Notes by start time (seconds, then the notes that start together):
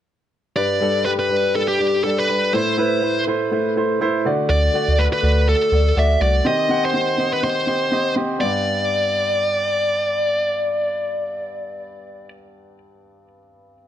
0.56 G2 G3 D4 B4 D5
0.81 G3 D4 A4
1.05 G3 D4 G4 B4
1.19 B4
1.29 G3 D4 B4
1.54 G3 D4 A4 B4
1.68 G4
1.79 G3 D4 D5
2.04 G3 D4 A4
2.19 B4
2.29 G3 D4 B4
2.53 A2 A3 E4 C5
2.77 A3 E4 B4
3.02 A3 E4 C5
3.27 A3 E4 C5
3.51 A3 E4 C5
3.76 A3 E4 C5
4.00 A3 E4 C5
4.25 D3 A3 F#4 D5
4.49 D2 D5
4.74 A3 F#4 D5
4.88 D2
4.98 A3 F#4 A4 B4
5.13 B4
5.22 D2 A3 F#4 D5
5.47 A3 F#4 A4
5.72 D2 A3 F#4 D5
5.96 D2 A3 F#4 D5 E5
6.20 C2 A3 F#4 D5
6.45 D#3 C4 G4 D#5
6.69 C4 G4 F#5
6.85 C5
6.94 C4 G4 D#5
7.18 C4 G4 D#5
7.33 B4
7.43 C4 G4 C5 D#5
7.67 C4 G4 D#5
7.92 C4 G4 D#5
8.16 C4 G4 D#5
8.39 G2 B3 G4 D5
8.45 D5